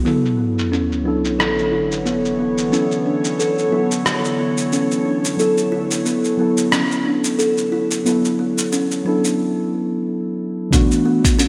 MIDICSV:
0, 0, Header, 1, 7, 480
1, 0, Start_track
1, 0, Key_signature, 2, "minor"
1, 0, Tempo, 666667
1, 42, Time_signature, 4, 2, 24, 8
1, 8266, End_track
2, 0, Start_track
2, 0, Title_t, "Synth drone"
2, 0, Program_c, 0, 95
2, 32, Note_on_c, 0, 69, 66
2, 34, Note_on_c, 0, 73, 78
2, 35, Note_on_c, 0, 59, 65
2, 36, Note_on_c, 0, 52, 73
2, 37, Note_on_c, 0, 50, 66
2, 6729, Note_off_c, 0, 69, 0
2, 6730, Note_off_c, 0, 59, 0
2, 6730, Note_off_c, 0, 73, 0
2, 6731, Note_off_c, 0, 50, 0
2, 6731, Note_off_c, 0, 52, 0
2, 7723, Note_on_c, 0, 50, 79
2, 7725, Note_on_c, 0, 69, 77
2, 7725, Note_on_c, 0, 76, 96
2, 7726, Note_on_c, 0, 73, 70
2, 8266, Note_off_c, 0, 50, 0
2, 8266, Note_off_c, 0, 69, 0
2, 8266, Note_off_c, 0, 73, 0
2, 8266, Note_off_c, 0, 76, 0
2, 8266, End_track
3, 0, Start_track
3, 0, Title_t, "Kalimba"
3, 0, Program_c, 1, 108
3, 36, Note_on_c, 1, 59, 89
3, 116, Note_off_c, 1, 59, 0
3, 276, Note_on_c, 1, 59, 65
3, 509, Note_off_c, 1, 59, 0
3, 518, Note_on_c, 1, 61, 84
3, 648, Note_off_c, 1, 61, 0
3, 758, Note_on_c, 1, 62, 65
3, 837, Note_off_c, 1, 62, 0
3, 1000, Note_on_c, 1, 69, 68
3, 1129, Note_off_c, 1, 69, 0
3, 1236, Note_on_c, 1, 64, 78
3, 1367, Note_off_c, 1, 64, 0
3, 1480, Note_on_c, 1, 59, 85
3, 1558, Note_off_c, 1, 59, 0
3, 1721, Note_on_c, 1, 59, 65
3, 1951, Note_off_c, 1, 59, 0
3, 1959, Note_on_c, 1, 61, 90
3, 2089, Note_off_c, 1, 61, 0
3, 2202, Note_on_c, 1, 62, 67
3, 2279, Note_off_c, 1, 62, 0
3, 2444, Note_on_c, 1, 69, 70
3, 2571, Note_off_c, 1, 69, 0
3, 2681, Note_on_c, 1, 64, 85
3, 2810, Note_off_c, 1, 64, 0
3, 2918, Note_on_c, 1, 59, 85
3, 2997, Note_off_c, 1, 59, 0
3, 3161, Note_on_c, 1, 59, 60
3, 3391, Note_off_c, 1, 59, 0
3, 3402, Note_on_c, 1, 61, 85
3, 3530, Note_off_c, 1, 61, 0
3, 3638, Note_on_c, 1, 62, 63
3, 3717, Note_off_c, 1, 62, 0
3, 3882, Note_on_c, 1, 69, 71
3, 4010, Note_off_c, 1, 69, 0
3, 4119, Note_on_c, 1, 64, 87
3, 4249, Note_off_c, 1, 64, 0
3, 4359, Note_on_c, 1, 59, 83
3, 4437, Note_off_c, 1, 59, 0
3, 4601, Note_on_c, 1, 59, 66
3, 4831, Note_off_c, 1, 59, 0
3, 4835, Note_on_c, 1, 61, 87
3, 4967, Note_off_c, 1, 61, 0
3, 5077, Note_on_c, 1, 62, 67
3, 5157, Note_off_c, 1, 62, 0
3, 5318, Note_on_c, 1, 69, 74
3, 5449, Note_off_c, 1, 69, 0
3, 5560, Note_on_c, 1, 64, 88
3, 5689, Note_off_c, 1, 64, 0
3, 5801, Note_on_c, 1, 59, 95
3, 5879, Note_off_c, 1, 59, 0
3, 6042, Note_on_c, 1, 59, 67
3, 6271, Note_off_c, 1, 59, 0
3, 6281, Note_on_c, 1, 61, 89
3, 6410, Note_off_c, 1, 61, 0
3, 6521, Note_on_c, 1, 62, 66
3, 6599, Note_off_c, 1, 62, 0
3, 7724, Note_on_c, 1, 59, 106
3, 7800, Note_off_c, 1, 59, 0
3, 7960, Note_on_c, 1, 59, 74
3, 8191, Note_off_c, 1, 59, 0
3, 8198, Note_on_c, 1, 61, 101
3, 8266, Note_off_c, 1, 61, 0
3, 8266, End_track
4, 0, Start_track
4, 0, Title_t, "Synth keys"
4, 0, Program_c, 2, 88
4, 0, Control_c, 2, 64, 127
4, 24, Note_on_c, 2, 54, 75
4, 34, Note_on_c, 2, 59, 68
4, 44, Note_on_c, 2, 64, 71
4, 53, Control_c, 2, 64, 0
4, 54, Note_on_c, 2, 69, 81
4, 158, Control_c, 2, 64, 127
4, 728, Note_off_c, 2, 54, 0
4, 733, Note_off_c, 2, 59, 0
4, 738, Note_off_c, 2, 64, 0
4, 743, Note_off_c, 2, 69, 0
4, 745, Note_on_c, 2, 54, 78
4, 756, Note_on_c, 2, 59, 67
4, 764, Note_on_c, 2, 64, 71
4, 775, Note_on_c, 2, 69, 89
4, 1929, Note_off_c, 2, 54, 0
4, 1934, Note_off_c, 2, 59, 0
4, 1938, Note_off_c, 2, 64, 0
4, 1943, Note_on_c, 2, 54, 72
4, 1944, Note_off_c, 2, 69, 0
4, 1954, Note_on_c, 2, 59, 71
4, 1963, Note_on_c, 2, 64, 71
4, 1972, Note_on_c, 2, 69, 87
4, 2648, Note_off_c, 2, 54, 0
4, 2653, Note_off_c, 2, 59, 0
4, 2657, Note_off_c, 2, 64, 0
4, 2662, Note_off_c, 2, 69, 0
4, 2664, Note_on_c, 2, 54, 85
4, 2674, Note_on_c, 2, 59, 76
4, 2682, Note_on_c, 2, 64, 72
4, 2691, Note_on_c, 2, 69, 93
4, 3848, Note_off_c, 2, 54, 0
4, 3853, Note_off_c, 2, 59, 0
4, 3857, Note_off_c, 2, 64, 0
4, 3862, Note_off_c, 2, 69, 0
4, 3865, Note_on_c, 2, 54, 73
4, 3874, Note_on_c, 2, 59, 69
4, 3884, Note_on_c, 2, 64, 74
4, 3896, Note_on_c, 2, 69, 87
4, 4569, Note_off_c, 2, 54, 0
4, 4573, Note_off_c, 2, 59, 0
4, 4578, Note_off_c, 2, 64, 0
4, 4584, Note_off_c, 2, 69, 0
4, 4588, Note_on_c, 2, 54, 84
4, 4595, Note_on_c, 2, 59, 79
4, 4605, Note_on_c, 2, 64, 75
4, 4614, Note_on_c, 2, 69, 93
4, 5770, Note_off_c, 2, 54, 0
4, 5774, Note_off_c, 2, 59, 0
4, 5778, Note_off_c, 2, 64, 0
4, 5783, Note_off_c, 2, 69, 0
4, 5792, Note_on_c, 2, 54, 80
4, 5800, Note_on_c, 2, 59, 70
4, 5812, Note_on_c, 2, 64, 74
4, 5820, Note_on_c, 2, 69, 85
4, 6492, Note_off_c, 2, 54, 0
4, 6496, Note_off_c, 2, 59, 0
4, 6502, Note_off_c, 2, 64, 0
4, 6506, Note_off_c, 2, 69, 0
4, 6513, Note_on_c, 2, 54, 89
4, 6524, Note_on_c, 2, 59, 80
4, 6533, Note_on_c, 2, 64, 79
4, 6542, Note_on_c, 2, 69, 93
4, 7692, Note_off_c, 2, 54, 0
4, 7698, Note_off_c, 2, 59, 0
4, 7702, Note_off_c, 2, 64, 0
4, 7707, Note_off_c, 2, 69, 0
4, 7707, Note_on_c, 2, 52, 83
4, 7719, Note_on_c, 2, 57, 78
4, 7729, Note_on_c, 2, 62, 80
4, 7733, Control_c, 2, 64, 0
4, 7738, Note_on_c, 2, 66, 93
4, 7847, Control_c, 2, 64, 127
4, 8266, Note_off_c, 2, 52, 0
4, 8266, Note_off_c, 2, 57, 0
4, 8266, Note_off_c, 2, 62, 0
4, 8266, Note_off_c, 2, 66, 0
4, 8266, End_track
5, 0, Start_track
5, 0, Title_t, "Upright bass"
5, 0, Program_c, 3, 32
5, 7724, Note_on_c, 3, 35, 95
5, 7815, Note_off_c, 3, 35, 0
5, 8266, End_track
6, 0, Start_track
6, 0, Title_t, "Sub drop"
6, 0, Program_c, 4, 103
6, 40, Note_on_c, 4, 60, 60
6, 1961, Note_off_c, 4, 60, 0
6, 8266, End_track
7, 0, Start_track
7, 0, Title_t, "Drums"
7, 43, Note_on_c, 9, 82, 50
7, 115, Note_off_c, 9, 82, 0
7, 184, Note_on_c, 9, 82, 29
7, 256, Note_off_c, 9, 82, 0
7, 422, Note_on_c, 9, 82, 57
7, 494, Note_off_c, 9, 82, 0
7, 528, Note_on_c, 9, 82, 49
7, 600, Note_off_c, 9, 82, 0
7, 664, Note_on_c, 9, 82, 29
7, 736, Note_off_c, 9, 82, 0
7, 900, Note_on_c, 9, 82, 61
7, 972, Note_off_c, 9, 82, 0
7, 1008, Note_on_c, 9, 37, 70
7, 1009, Note_on_c, 9, 82, 46
7, 1080, Note_off_c, 9, 37, 0
7, 1081, Note_off_c, 9, 82, 0
7, 1142, Note_on_c, 9, 82, 31
7, 1214, Note_off_c, 9, 82, 0
7, 1381, Note_on_c, 9, 82, 57
7, 1453, Note_off_c, 9, 82, 0
7, 1483, Note_on_c, 9, 82, 45
7, 1555, Note_off_c, 9, 82, 0
7, 1622, Note_on_c, 9, 82, 28
7, 1694, Note_off_c, 9, 82, 0
7, 1858, Note_on_c, 9, 82, 59
7, 1930, Note_off_c, 9, 82, 0
7, 1967, Note_on_c, 9, 82, 49
7, 2039, Note_off_c, 9, 82, 0
7, 2098, Note_on_c, 9, 82, 33
7, 2170, Note_off_c, 9, 82, 0
7, 2337, Note_on_c, 9, 82, 60
7, 2409, Note_off_c, 9, 82, 0
7, 2447, Note_on_c, 9, 82, 54
7, 2519, Note_off_c, 9, 82, 0
7, 2579, Note_on_c, 9, 82, 29
7, 2651, Note_off_c, 9, 82, 0
7, 2819, Note_on_c, 9, 82, 63
7, 2891, Note_off_c, 9, 82, 0
7, 2922, Note_on_c, 9, 37, 72
7, 2923, Note_on_c, 9, 82, 48
7, 2994, Note_off_c, 9, 37, 0
7, 2995, Note_off_c, 9, 82, 0
7, 3057, Note_on_c, 9, 82, 31
7, 3129, Note_off_c, 9, 82, 0
7, 3294, Note_on_c, 9, 82, 59
7, 3366, Note_off_c, 9, 82, 0
7, 3403, Note_on_c, 9, 82, 46
7, 3475, Note_off_c, 9, 82, 0
7, 3539, Note_on_c, 9, 82, 29
7, 3611, Note_off_c, 9, 82, 0
7, 3779, Note_on_c, 9, 82, 62
7, 3851, Note_off_c, 9, 82, 0
7, 3883, Note_on_c, 9, 82, 50
7, 3955, Note_off_c, 9, 82, 0
7, 4015, Note_on_c, 9, 82, 33
7, 4087, Note_off_c, 9, 82, 0
7, 4256, Note_on_c, 9, 82, 68
7, 4328, Note_off_c, 9, 82, 0
7, 4362, Note_on_c, 9, 82, 51
7, 4434, Note_off_c, 9, 82, 0
7, 4495, Note_on_c, 9, 82, 32
7, 4567, Note_off_c, 9, 82, 0
7, 4734, Note_on_c, 9, 82, 62
7, 4806, Note_off_c, 9, 82, 0
7, 4840, Note_on_c, 9, 37, 68
7, 4840, Note_on_c, 9, 82, 47
7, 4912, Note_off_c, 9, 37, 0
7, 4912, Note_off_c, 9, 82, 0
7, 4978, Note_on_c, 9, 82, 32
7, 5050, Note_off_c, 9, 82, 0
7, 5215, Note_on_c, 9, 82, 60
7, 5287, Note_off_c, 9, 82, 0
7, 5323, Note_on_c, 9, 82, 51
7, 5395, Note_off_c, 9, 82, 0
7, 5455, Note_on_c, 9, 82, 30
7, 5527, Note_off_c, 9, 82, 0
7, 5696, Note_on_c, 9, 82, 65
7, 5768, Note_off_c, 9, 82, 0
7, 5804, Note_on_c, 9, 82, 52
7, 5876, Note_off_c, 9, 82, 0
7, 5940, Note_on_c, 9, 82, 30
7, 6012, Note_off_c, 9, 82, 0
7, 6177, Note_on_c, 9, 82, 62
7, 6249, Note_off_c, 9, 82, 0
7, 6283, Note_on_c, 9, 82, 55
7, 6355, Note_off_c, 9, 82, 0
7, 6418, Note_on_c, 9, 82, 32
7, 6490, Note_off_c, 9, 82, 0
7, 6657, Note_on_c, 9, 82, 64
7, 6729, Note_off_c, 9, 82, 0
7, 7723, Note_on_c, 9, 36, 117
7, 7725, Note_on_c, 9, 42, 47
7, 7726, Note_on_c, 9, 82, 54
7, 7795, Note_off_c, 9, 36, 0
7, 7797, Note_off_c, 9, 42, 0
7, 7798, Note_off_c, 9, 82, 0
7, 7859, Note_on_c, 9, 82, 32
7, 7931, Note_off_c, 9, 82, 0
7, 8098, Note_on_c, 9, 36, 99
7, 8099, Note_on_c, 9, 42, 61
7, 8100, Note_on_c, 9, 82, 69
7, 8170, Note_off_c, 9, 36, 0
7, 8171, Note_off_c, 9, 42, 0
7, 8172, Note_off_c, 9, 82, 0
7, 8203, Note_on_c, 9, 42, 47
7, 8204, Note_on_c, 9, 82, 59
7, 8266, Note_off_c, 9, 42, 0
7, 8266, Note_off_c, 9, 82, 0
7, 8266, End_track
0, 0, End_of_file